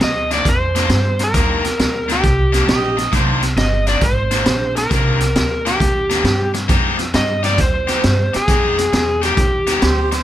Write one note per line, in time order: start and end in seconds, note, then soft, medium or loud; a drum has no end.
0.01 0.44 D2 medium
0.01 0.33 D#5 medium
0.01 muted overdriven electric guitar stroke soft
0.01 snare loud
0.01 closed hi-hat medium
0.31 0.45 C3 medium
0.31 0.45 D#3 medium
0.31 0.46 A#3 medium
0.31 0.46 D4 medium
0.31 0.48 D5 medium
0.31 snare soft
0.31 closed hi-hat medium
0.45 0.89 F2 medium
0.45 1.24 C5 medium
0.45 muted overdriven electric guitar stroke soft
0.45 kick medium
0.45 snare soft
0.45 closed hi-hat medium
0.75 0.90 C3 medium
0.75 0.90 D#3 medium
0.75 0.90 A#3 medium
0.75 0.90 D4 medium
0.75 snare soft
0.75 closed hi-hat medium
0.89 1.33 G2 medium
0.89 muted overdriven electric guitar stroke soft
0.89 snare medium
0.89 closed hi-hat medium
1.19 muted overdriven electric guitar stroke soft
1.19 snare soft
1.19 closed hi-hat medium
1.24 2.13 A#4 medium
1.34 1.78 D#2 medium
1.34 1.64 C3 medium
1.34 1.64 D#3 medium
1.34 1.64 A#3 medium
1.34 1.64 D4 medium
1.34 kick loud
1.34 snare soft
1.34 closed hi-hat medium
1.64 muted overdriven electric guitar stroke soft
1.64 snare soft
1.64 closed hi-hat medium
1.79 2.22 D2 medium
1.79 muted overdriven electric guitar stroke soft
1.79 snare loud
1.79 closed hi-hat medium
2.08 2.22 C3 medium
2.08 2.22 D#3 medium
2.08 2.22 A#3 medium
2.08 2.23 D4 medium
2.08 2.96 G4 medium
2.08 snare soft
2.08 closed hi-hat medium
2.23 2.67 C2 medium
2.23 muted overdriven electric guitar stroke soft
2.23 kick medium
2.23 snare soft
2.23 closed hi-hat medium
2.53 2.66 C3 medium
2.53 2.67 D#3 medium
2.53 2.67 A#3 medium
2.53 2.68 D4 medium
2.53 snare soft
2.53 closed hi-hat medium
2.68 3.11 A#1 medium
2.68 3.13 D#5 medium
2.68 muted overdriven electric guitar stroke soft
2.68 snare loud
2.68 closed hi-hat medium
2.97 muted overdriven electric guitar stroke soft
2.97 snare soft
2.97 closed hi-hat medium
3.12 3.56 C2 medium
3.12 3.42 C3 medium
3.12 3.43 D#3 medium
3.12 3.42 A#3 medium
3.12 3.42 D4 medium
3.12 3.43 C5 medium
3.12 kick loud
3.12 snare soft
3.12 closed hi-hat medium
3.42 muted overdriven electric guitar stroke soft
3.42 snare soft
3.42 closed hi-hat medium
3.56 4.00 G1 medium
3.56 3.85 D#5 loud
3.56 muted overdriven electric guitar stroke soft
3.56 snare loud
3.56 closed hi-hat medium
3.87 4.01 C3 medium
3.87 4.01 D#3 medium
3.87 4.02 A#3 medium
3.87 4.02 D4 medium
3.87 4.03 D5 medium
3.87 snare soft
3.87 closed hi-hat medium
4.01 4.45 G#1 medium
4.01 4.77 C5 medium
4.01 muted overdriven electric guitar stroke soft
4.01 kick loud
4.01 snare soft
4.01 closed hi-hat medium
4.31 4.45 C3 medium
4.31 4.45 D#3 medium
4.31 4.45 A#3 medium
4.31 4.46 D4 medium
4.31 snare soft
4.31 closed hi-hat medium
4.46 4.90 A#1 medium
4.46 muted overdriven electric guitar stroke soft
4.46 snare loud
4.46 closed hi-hat medium
4.76 5.69 A#4 medium
4.76 muted overdriven electric guitar stroke soft
4.76 snare soft
4.76 closed hi-hat medium
4.90 5.34 C2 medium
4.90 5.20 C3 medium
4.90 5.19 D#3 medium
4.90 5.20 A#3 medium
4.90 5.19 D4 medium
4.90 kick loud
4.90 snare soft
4.90 closed hi-hat medium
5.20 muted overdriven electric guitar stroke soft
5.20 snare soft
5.20 closed hi-hat medium
5.35 5.79 D2 medium
5.35 muted overdriven electric guitar stroke soft
5.35 snare loud
5.35 closed hi-hat medium
5.65 5.78 C3 medium
5.65 5.79 D#3 medium
5.65 5.80 A#3 medium
5.65 5.80 D4 medium
5.65 6.51 G4 medium
5.65 snare soft
5.65 closed hi-hat medium
5.79 6.23 D#2 medium
5.79 muted overdriven electric guitar stroke soft
5.79 kick medium
5.79 snare soft
5.79 closed hi-hat medium
6.10 6.24 C3 medium
6.10 6.24 D#3 medium
6.10 6.24 A#3 medium
6.10 6.25 D4 medium
6.10 snare soft
6.10 closed hi-hat medium
6.24 6.68 G2 medium
6.24 muted overdriven electric guitar stroke soft
6.24 snare medium
6.24 closed hi-hat medium
6.54 muted overdriven electric guitar stroke soft
6.54 snare soft
6.54 closed hi-hat medium
6.68 7.12 F2 medium
6.68 6.99 F3 medium
6.68 6.97 G#3 medium
6.68 6.97 D#4 medium
6.68 6.96 G4 medium
6.68 kick loud
6.68 snare soft
6.68 closed hi-hat medium
6.98 muted overdriven electric guitar stroke soft
6.98 snare soft
6.98 closed hi-hat medium
7.14 7.57 G2 medium
7.14 7.45 D#5 medium
7.14 muted overdriven electric guitar stroke soft
7.14 snare loud
7.14 closed hi-hat medium
7.43 7.56 F3 medium
7.43 7.57 G#3 medium
7.43 7.57 D#4 medium
7.43 7.58 G4 medium
7.43 7.60 D5 medium
7.43 snare soft
7.43 closed hi-hat medium
7.58 8.02 D#2 medium
7.58 8.36 C5 medium
7.58 muted overdriven electric guitar stroke soft
7.58 kick loud
7.58 snare soft
7.58 closed hi-hat medium
7.87 8.01 F3 medium
7.87 8.01 G#3 medium
7.87 8.02 D#4 medium
7.87 8.02 G4 medium
7.87 snare soft
7.87 closed hi-hat medium
8.02 8.31 G2 medium
8.02 muted overdriven electric guitar stroke soft
8.02 snare loud
8.02 closed hi-hat medium
8.33 9.20 G#4 medium
8.33 muted overdriven electric guitar stroke soft
8.33 muted upright bass stroke soft
8.33 snare soft
8.33 closed hi-hat medium
8.48 8.91 F2 medium
8.48 8.78 F3 medium
8.48 8.78 G#3 medium
8.48 8.77 D#4 medium
8.48 8.77 G4 medium
8.48 kick loud
8.48 snare soft
8.48 closed hi-hat medium
8.78 muted overdriven electric guitar stroke soft
8.78 snare soft
8.78 closed hi-hat medium
8.93 9.36 E2 medium
8.93 muted overdriven electric guitar stroke soft
8.93 snare loud
8.93 closed hi-hat medium
9.22 9.36 F3 medium
9.22 9.36 G#3 medium
9.22 9.36 D#4 medium
9.22 9.36 G4 medium
9.22 10.09 G4 medium
9.22 snare soft
9.22 closed hi-hat medium
9.37 9.81 D#2 medium
9.37 muted overdriven electric guitar stroke soft
9.37 kick loud
9.37 snare soft
9.37 closed hi-hat medium
9.67 9.80 F3 medium
9.67 9.81 G#3 medium
9.67 9.81 D#4 medium
9.67 9.82 G4 medium
9.67 snare soft
9.67 closed hi-hat medium
9.81 10.23 D2 medium
9.81 10.11 C5 medium
9.81 muted overdriven electric guitar stroke soft
9.81 snare loud
9.81 closed hi-hat medium
10.12 10.23 C5 medium
10.12 muted overdriven electric guitar stroke soft
10.12 snare soft
10.12 closed hi-hat medium